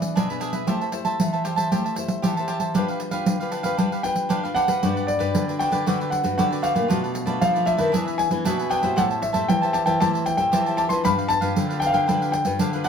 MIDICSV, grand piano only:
0, 0, Header, 1, 2, 480
1, 0, Start_track
1, 0, Key_signature, 1, "major"
1, 0, Tempo, 518135
1, 635, Time_signature, 4, 2, 24, 8
1, 11938, End_track
2, 0, Start_track
2, 0, Title_t, "Grand piano"
2, 0, Program_c, 0, 0
2, 0, Note_on_c, 0, 74, 69
2, 352, Note_off_c, 0, 74, 0
2, 3736, Note_on_c, 0, 79, 82
2, 4211, Note_on_c, 0, 78, 93
2, 4241, Note_off_c, 0, 79, 0
2, 4697, Note_on_c, 0, 74, 76
2, 4718, Note_off_c, 0, 78, 0
2, 5152, Note_off_c, 0, 74, 0
2, 5182, Note_on_c, 0, 79, 82
2, 5653, Note_on_c, 0, 78, 71
2, 5684, Note_off_c, 0, 79, 0
2, 5893, Note_off_c, 0, 78, 0
2, 5907, Note_on_c, 0, 78, 73
2, 5962, Note_off_c, 0, 78, 0
2, 6141, Note_on_c, 0, 77, 79
2, 6854, Note_off_c, 0, 77, 0
2, 6868, Note_on_c, 0, 77, 85
2, 7096, Note_off_c, 0, 77, 0
2, 7098, Note_on_c, 0, 76, 87
2, 7554, Note_off_c, 0, 76, 0
2, 7578, Note_on_c, 0, 80, 87
2, 8064, Note_on_c, 0, 79, 85
2, 8083, Note_off_c, 0, 80, 0
2, 8309, Note_on_c, 0, 78, 88
2, 8318, Note_off_c, 0, 79, 0
2, 8364, Note_off_c, 0, 78, 0
2, 8540, Note_on_c, 0, 76, 81
2, 8787, Note_on_c, 0, 79, 92
2, 8797, Note_off_c, 0, 76, 0
2, 9015, Note_off_c, 0, 79, 0
2, 9016, Note_on_c, 0, 81, 83
2, 9062, Note_off_c, 0, 81, 0
2, 9133, Note_on_c, 0, 79, 80
2, 9256, Note_off_c, 0, 79, 0
2, 9269, Note_on_c, 0, 81, 95
2, 9324, Note_off_c, 0, 81, 0
2, 9503, Note_on_c, 0, 79, 80
2, 9596, Note_off_c, 0, 79, 0
2, 9610, Note_on_c, 0, 79, 82
2, 9958, Note_off_c, 0, 79, 0
2, 9979, Note_on_c, 0, 81, 78
2, 10025, Note_off_c, 0, 81, 0
2, 10090, Note_on_c, 0, 84, 80
2, 10136, Note_off_c, 0, 84, 0
2, 10234, Note_on_c, 0, 83, 96
2, 10454, Note_on_c, 0, 81, 104
2, 10483, Note_off_c, 0, 83, 0
2, 10930, Note_on_c, 0, 79, 91
2, 10960, Note_off_c, 0, 81, 0
2, 10992, Note_on_c, 0, 77, 76
2, 11003, Note_off_c, 0, 79, 0
2, 11065, Note_on_c, 0, 79, 85
2, 11072, Note_off_c, 0, 77, 0
2, 11400, Note_off_c, 0, 79, 0
2, 11414, Note_on_c, 0, 79, 80
2, 11902, Note_on_c, 0, 78, 83
2, 11920, Note_off_c, 0, 79, 0
2, 11938, Note_off_c, 0, 78, 0
2, 11938, End_track
0, 0, End_of_file